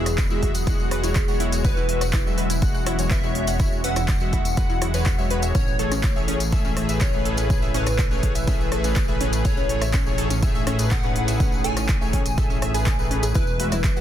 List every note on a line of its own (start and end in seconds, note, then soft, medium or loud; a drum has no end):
0.00 5.52 E1 loud
0.00 5.51 E3 medium
0.00 5.51 F#3 medium
0.00 1.61 B3 medium
0.00 5.51 F#4 medium
0.00 1.55 G#4 loud
0.00 13.31 G#4 medium
0.06 cross-stick medium
0.06 closed hi-hat medium
0.06 tambourine medium
0.18 0.24 B4 medium
0.18 kick loud
0.18 clap loud
0.18 closed hi-hat medium
0.18 tambourine medium
0.30 0.53 G#3 medium
0.30 0.38 E4 medium
0.30 0.53 F#4 medium
0.30 0.53 E5 loud
0.30 tambourine soft
0.43 kick medium
0.43 open hi-hat loud
0.54 0.63 F#5 medium
0.54 closed hi-hat medium
0.54 tambourine medium
0.67 0.89 G#3 medium
0.67 0.72 E4 loud
0.67 0.89 F#4 medium
0.67 0.89 F#5 loud
0.67 kick loud
0.67 closed hi-hat medium
0.67 tambourine medium
0.80 tambourine soft
0.91 1.02 G#3 medium
0.91 1.02 F#4 medium
0.91 0.97 B4 medium
0.91 1.02 F#5 medium
0.91 cross-stick medium
0.91 open hi-hat loud
1.04 1.18 G#3 medium
1.04 1.11 E4 medium
1.04 1.18 F#4 medium
1.04 1.18 C#5 medium
1.04 closed hi-hat medium
1.04 tambourine medium
1.16 kick loud
1.16 clap loud
1.16 closed hi-hat medium
1.16 tambourine medium
1.28 1.86 G#3 medium
1.28 1.86 F#4 medium
1.28 1.86 C#5 medium
1.28 1.36 F#5 medium
1.28 tambourine soft
1.40 1.45 E4 loud
1.40 open hi-hat medium
1.52 closed hi-hat medium
1.52 tambourine medium
1.64 5.51 C#4 medium
1.64 1.70 B4 medium
1.64 2.28 B4 loud
1.64 kick loud
1.64 closed hi-hat medium
1.64 tambourine medium
1.77 1.85 E4 medium
1.77 tambourine soft
1.89 2.03 G#3 medium
1.89 2.03 F#4 medium
1.89 2.03 E5 medium
1.89 open hi-hat loud
2.01 2.09 F#5 medium
2.01 cross-stick medium
2.01 closed hi-hat medium
2.01 tambourine medium
2.13 2.19 E4 medium
2.13 kick loud
2.13 clap loud
2.13 closed hi-hat medium
2.13 tambourine medium
2.26 2.48 G#3 loud
2.26 2.48 F#4 medium
2.26 2.48 E5 loud
2.26 tambourine soft
2.38 2.43 B4 medium
2.38 open hi-hat loud
2.50 2.58 E4 medium
2.50 closed hi-hat medium
2.50 tambourine medium
2.62 2.84 G#3 medium
2.62 2.84 F#4 medium
2.62 2.84 F#5 loud
2.62 kick loud
2.62 closed hi-hat medium
2.62 tambourine medium
2.75 2.82 F#5 medium
2.75 tambourine soft
2.86 2.97 G#3 medium
2.86 2.92 E4 loud
2.86 2.97 F#4 medium
2.86 2.97 F#5 medium
2.86 cross-stick medium
2.86 open hi-hat loud
2.99 3.13 G#3 medium
2.99 3.13 F#4 medium
2.99 3.13 C#5 medium
2.99 closed hi-hat medium
2.99 tambourine medium
3.11 3.16 B4 medium
3.11 3.75 E5 loud
3.11 kick loud
3.11 clap loud
3.11 closed hi-hat medium
3.11 tambourine medium
3.23 3.81 G#3 medium
3.23 3.31 E4 medium
3.23 3.81 F#4 medium
3.23 3.81 C#5 loud
3.23 tambourine soft
3.35 open hi-hat medium
3.47 3.55 F#5 medium
3.47 closed hi-hat medium
3.47 tambourine medium
3.60 3.65 E4 loud
3.60 kick loud
3.60 closed hi-hat soft
3.60 tambourine medium
3.72 tambourine soft
3.84 3.98 G#3 medium
3.84 3.98 F#4 medium
3.84 3.89 B4 medium
3.84 3.98 E5 medium
3.84 5.45 F#5 loud
3.84 open hi-hat loud
3.96 4.04 E4 medium
3.96 cross-stick medium
3.96 closed hi-hat medium
3.96 tambourine medium
4.08 kick loud
4.08 clap loud
4.08 closed hi-hat medium
4.08 tambourine medium
4.20 4.43 G#3 loud
4.20 4.43 F#4 medium
4.20 4.43 E5 loud
4.20 4.29 F#5 medium
4.20 tambourine soft
4.33 4.38 E4 loud
4.33 kick medium
4.33 open hi-hat medium
4.45 closed hi-hat medium
4.45 tambourine medium
4.57 4.79 G#3 medium
4.57 4.79 F#4 medium
4.57 4.63 B4 medium
4.57 4.79 F#5 loud
4.57 kick loud
4.57 closed hi-hat medium
4.57 tambourine medium
4.70 4.77 E4 medium
4.70 tambourine soft
4.82 4.92 G#3 medium
4.82 4.87 E4 medium
4.82 4.92 F#4 medium
4.82 4.92 F#5 medium
4.82 cross-stick medium
4.82 open hi-hat loud
4.94 5.08 G#3 medium
4.94 5.08 F#4 medium
4.94 5.02 B4 loud
4.94 5.08 C#5 loud
4.94 closed hi-hat medium
4.94 tambourine medium
5.06 5.11 B4 medium
5.06 kick loud
5.06 clap loud
5.06 closed hi-hat medium
5.06 tambourine medium
5.18 5.53 G#3 medium
5.18 5.53 F#4 medium
5.18 5.53 C#5 loud
5.18 5.22 E5 medium
5.18 tambourine soft
5.30 5.36 B4 loud
5.30 open hi-hat loud
5.42 5.51 E5 medium
5.42 closed hi-hat medium
5.42 tambourine medium
5.55 13.33 A1 medium
5.55 13.31 C#3 medium
5.55 14.01 E3 medium
5.55 13.31 A3 medium
5.55 5.60 C#4 loud
5.55 9.41 E4 medium
5.55 6.18 C#5 loud
5.55 kick loud
5.55 closed hi-hat soft
5.55 tambourine medium
5.68 tambourine soft
5.79 5.93 A2 medium
5.79 5.93 A3 medium
5.79 5.93 G#4 medium
5.79 5.85 A4 medium
5.79 5.93 C#5 medium
5.79 open hi-hat loud
5.92 5.99 C#4 medium
5.92 cross-stick medium
5.92 closed hi-hat medium
5.92 tambourine medium
6.03 kick loud
6.03 clap loud
6.03 closed hi-hat medium
6.03 tambourine medium
6.16 6.38 A2 medium
6.16 6.38 A3 medium
6.16 6.38 G#4 medium
6.16 6.38 C#5 loud
6.16 6.24 E5 medium
6.16 tambourine soft
6.28 6.33 C#4 loud
6.28 open hi-hat medium
6.40 closed hi-hat medium
6.40 tambourine medium
6.52 6.74 A2 medium
6.52 6.74 A3 medium
6.52 6.74 G#4 medium
6.52 6.58 A4 medium
6.52 6.74 E5 loud
6.52 kick loud
6.52 closed hi-hat soft
6.52 tambourine medium
6.65 6.73 C#4 medium
6.65 tambourine soft
6.77 6.87 A2 medium
6.77 6.87 A3 medium
6.77 6.87 G#4 medium
6.77 6.87 E5 medium
6.77 cross-stick medium
6.77 open hi-hat loud
6.89 7.03 A2 medium
6.89 7.03 A3 medium
6.89 7.03 G#4 medium
6.89 7.03 B4 loud
6.89 6.97 E5 medium
6.89 closed hi-hat medium
6.89 tambourine medium
7.01 7.06 C#4 loud
7.01 7.76 C#5 loud
7.01 kick loud
7.01 clap loud
7.01 closed hi-hat medium
7.01 tambourine medium
7.13 7.72 A2 medium
7.13 7.72 A3 medium
7.13 7.72 G#4 medium
7.13 7.72 B4 loud
7.13 tambourine soft
7.25 7.31 A4 medium
7.25 open hi-hat medium
7.37 7.46 C#4 medium
7.37 closed hi-hat medium
7.37 tambourine medium
7.50 kick loud
7.50 closed hi-hat medium
7.50 tambourine medium
7.62 7.70 E5 medium
7.62 tambourine soft
7.74 7.88 A2 medium
7.74 7.88 A3 medium
7.74 7.80 C#4 loud
7.74 7.88 G#4 medium
7.74 9.36 B4 loud
7.74 7.88 C#5 medium
7.74 open hi-hat loud
7.86 cross-stick medium
7.86 closed hi-hat medium
7.86 tambourine medium
7.99 8.04 A4 medium
7.99 kick loud
7.99 clap loud
7.99 closed hi-hat medium
7.99 tambourine medium
8.11 8.33 A2 loud
8.11 8.33 A3 medium
8.11 8.19 C#4 medium
8.11 8.33 G#4 medium
8.11 8.33 C#5 loud
8.11 tambourine soft
8.23 kick medium
8.23 open hi-hat medium
8.35 8.43 E5 medium
8.35 closed hi-hat medium
8.35 tambourine medium
8.47 8.69 A2 medium
8.47 8.69 A3 medium
8.47 8.53 C#4 loud
8.47 8.69 G#4 medium
8.47 8.69 E5 loud
8.47 kick loud
8.47 closed hi-hat soft
8.47 tambourine medium
8.61 tambourine soft
8.72 8.82 A2 medium
8.72 8.82 A3 medium
8.72 8.82 G#4 medium
8.72 8.77 A4 medium
8.72 8.82 E5 medium
8.72 cross-stick medium
8.72 open hi-hat loud
8.84 8.98 A2 medium
8.84 8.98 A3 medium
8.84 8.92 C#4 medium
8.84 8.98 G#4 medium
8.84 8.98 B4 medium
8.84 closed hi-hat medium
8.84 tambourine medium
8.96 kick loud
8.96 clap loud
8.96 closed hi-hat medium
8.96 tambourine medium
9.08 9.67 A2 medium
9.08 9.67 A3 medium
9.08 9.67 G#4 medium
9.08 9.67 B4 medium
9.08 9.16 E5 medium
9.08 tambourine soft
9.21 9.26 C#4 loud
9.21 open hi-hat medium
9.33 closed hi-hat medium
9.33 tambourine medium
9.45 13.31 D#4 medium
9.45 9.50 A4 medium
9.45 10.09 C#5 loud
9.45 kick loud
9.45 closed hi-hat medium
9.45 tambourine medium
9.57 9.65 C#4 medium
9.57 tambourine soft
9.69 9.84 A2 medium
9.69 9.84 A3 medium
9.69 9.84 G#4 medium
9.69 9.84 C#5 medium
9.69 open hi-hat loud
9.82 9.90 E5 medium
9.82 cross-stick medium
9.82 closed hi-hat medium
9.82 tambourine medium
9.93 9.99 C#4 loud
9.93 kick loud
9.93 clap loud
9.93 closed hi-hat medium
9.93 tambourine medium
10.06 10.29 A2 medium
10.06 10.29 A3 medium
10.06 10.29 G#4 medium
10.06 10.29 C#5 loud
10.06 tambourine soft
10.18 10.24 A4 medium
10.18 open hi-hat medium
10.30 10.38 C#4 medium
10.30 closed hi-hat medium
10.30 tambourine medium
10.43 10.65 A2 medium
10.43 10.65 A3 medium
10.43 10.65 G#4 medium
10.43 10.65 E5 loud
10.43 kick loud
10.43 closed hi-hat medium
10.43 tambourine medium
10.55 10.63 E5 medium
10.55 tambourine soft
10.67 10.78 A2 medium
10.67 10.77 A3 medium
10.67 10.72 C#4 loud
10.67 10.78 G#4 medium
10.67 10.78 E5 medium
10.67 cross-stick medium
10.67 open hi-hat loud
10.79 10.93 A2 medium
10.79 10.93 A3 medium
10.79 10.93 G#4 medium
10.79 10.93 B4 medium
10.79 closed hi-hat medium
10.79 tambourine medium
10.91 10.97 A4 medium
10.91 11.66 F#5 loud
10.91 kick loud
10.91 clap loud
10.91 closed hi-hat medium
10.91 tambourine medium
11.03 11.62 A2 medium
11.03 11.62 A3 medium
11.03 11.12 C#4 medium
11.03 11.62 G#4 medium
11.03 11.62 B4 loud
11.03 tambourine soft
11.16 open hi-hat medium
11.28 11.36 E5 medium
11.28 closed hi-hat medium
11.28 tambourine medium
11.40 11.45 C#4 loud
11.40 kick loud
11.40 closed hi-hat medium
11.40 tambourine medium
11.52 tambourine soft
11.64 11.79 A2 medium
11.64 11.79 A3 medium
11.64 11.79 G#4 medium
11.64 11.70 A4 medium
11.64 11.79 C#5 medium
11.64 13.26 G#5 loud
11.64 open hi-hat loud
11.77 11.85 C#4 medium
11.77 cross-stick medium
11.77 closed hi-hat medium
11.77 tambourine medium
11.89 kick loud
11.89 clap loud
11.89 closed hi-hat medium
11.89 tambourine medium
12.01 12.24 A2 medium
12.01 12.24 A3 medium
12.01 12.24 G#4 medium
12.01 12.24 C#5 loud
12.01 12.09 E5 medium
12.01 tambourine soft
12.13 12.19 C#4 loud
12.13 kick medium
12.13 open hi-hat medium
12.26 closed hi-hat medium
12.26 tambourine medium
12.38 12.60 A2 medium
12.38 12.60 A3 medium
12.38 12.60 G#4 medium
12.38 12.43 A4 medium
12.38 12.60 E5 loud
12.38 kick loud
12.38 closed hi-hat medium
12.38 tambourine medium
12.50 12.58 C#4 medium
12.50 tambourine soft
12.62 12.73 A2 medium
12.62 12.73 A3 medium
12.62 12.73 G#4 medium
12.62 12.70 E5 medium
12.62 12.73 E5 medium
12.62 cross-stick medium
12.62 open hi-hat loud
12.74 12.88 A2 medium
12.74 12.88 A3 medium
12.74 12.80 G#4 loud
12.74 12.88 G#4 medium
12.74 12.88 B4 loud
12.74 closed hi-hat medium
12.74 tambourine medium
12.86 kick loud
12.86 clap loud
12.86 closed hi-hat medium
12.86 tambourine medium
12.99 13.34 A2 medium
12.99 13.34 A3 medium
12.99 13.34 G#4 medium
12.99 13.34 B4 loud
12.99 tambourine soft
13.11 13.16 C#4 medium
13.11 open hi-hat medium
13.23 13.28 G#4 medium
13.23 closed hi-hat medium
13.23 tambourine medium
13.34 14.01 E1 medium
13.34 14.01 F#3 medium
13.34 14.01 B3 medium
13.34 13.41 E4 loud
13.34 14.01 F#4 medium
13.34 14.01 G#4 medium
13.34 13.99 B4 loud
13.34 kick loud
13.34 closed hi-hat medium
13.34 tambourine medium
13.47 tambourine soft
13.60 13.74 G#3 medium
13.60 13.74 F#4 medium
13.60 13.65 B4 medium
13.60 13.74 E5 medium
13.60 open hi-hat loud
13.60 high conga loud
13.72 13.80 E4 medium
13.72 cross-stick medium
13.72 closed hi-hat medium
13.72 mid tom medium
13.72 tambourine medium
13.84 kick loud
13.84 clap loud
13.84 closed hi-hat medium
13.84 tambourine medium
13.96 14.01 G#3 medium
13.96 14.01 F#4 medium
13.96 14.01 E5 loud
13.96 14.01 F#5 medium
13.96 tambourine soft